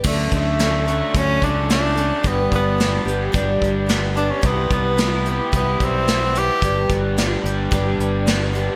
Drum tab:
CC |x-------|--------|--------|--------|
HH |-xxxxxxx|xxxxxxxx|xxxxxxxx|xxxxxxxx|
SD |--o---o-|--o---o-|--o---o-|--o---o-|
BD |oo--oo--|oo--oo--|oo--oo--|oo--o---|